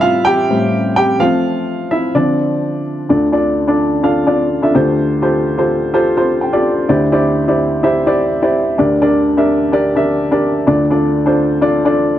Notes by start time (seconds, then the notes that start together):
Already playing: A2 G3 C4 E4 E5
0.01 F4 F5
0.25 G4 G5
0.50 A2 G3 C4
0.96 G4 G5
1.20 F3 A3 C4 F4 F5
1.91 E4 E5
2.15 D3 F3 C4 D4 D5
3.09 D2 D3 D4 F4 A4 D5
3.32 D4 F4 A4 D5
3.68 D4 F4 A4 D5
4.03 D4 F4 A4 F5
4.27 D4 F4 A4 D5
4.63 D4 F4 A4 E5
4.75 D2 D3 F4 G4 A4 C5
5.22 F4 G4 A4 C5
5.58 F4 G4 A4 C5
5.94 F4 G4 A4 C5
6.17 F4 G4 A4 C5 C6
6.41 G5
6.53 F4 G4 A4 D5
6.89 D2 D3 E4 G4 C5 D5
7.12 E4 G4 C5 D5
7.48 E4 G4 C5 D5
7.83 E4 G4 C5 E5
8.06 E4 G4 C5 D5
8.42 E4 G4 C5 D5
8.78 D2 D3 D4 G4 A#4 D5
9.02 D4 G4 A#4 D5
9.37 D4 G4 A#4 E5
9.72 D4 G4 A#4 D5
9.96 D4 G4 A#4 E5
10.31 D4 G4 A#4 D5
10.67 D2 D3 D4 F4 A4 D5
10.90 D4 F4 A4 D5
11.26 D4 F4 A4 C5
11.62 D4 F4 A4 D5
11.85 D4 F4 A4 D5